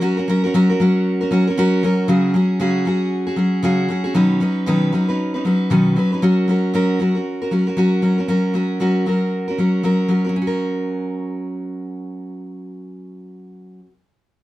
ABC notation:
X:1
M:4/4
L:1/16
Q:"Swing 16ths" 1/4=116
K:F#
V:1 name="Steel-string acoustic guitar"
[F,CFA] [CFA] [F,CFA] [CFA] [F,CFA] [CFA] [F,CFA]3 [CFA] [F,CFA] [CFA] [F,CFA]2 [F,CFA]2 | [C,F,CFG]2 [F,CFG]2 [C,F,CFG]2 [F,CFG]3 [CFG] [F,CFG]2 [C,F,CFG]2 [F,CFG] [CFG] | [B,,D,F,CDB]2 [F,CDB]2 [B,,D,F,CDB]2 [F,CDB] [F,CDB]2 [F,CDB] [F,CDB]2 [B,,D,F,CDB]2 [F,CDB] [F,CDB] | [F,CFA]2 [F,CFA]2 [F,CFA]2 [F,CFA] [CFA]2 [CFA] [F,CFA] [CFA] [F,CFA]2 [F,CFA] [CFA] |
[F,CFA]2 [F,CFA]2 [F,CFA]2 [F,CFA]3 [CFA] [F,CFA]2 [F,CFA]2 [F,CFA] [CFA] | [F,CFA]16- | [F,CFA]16 |]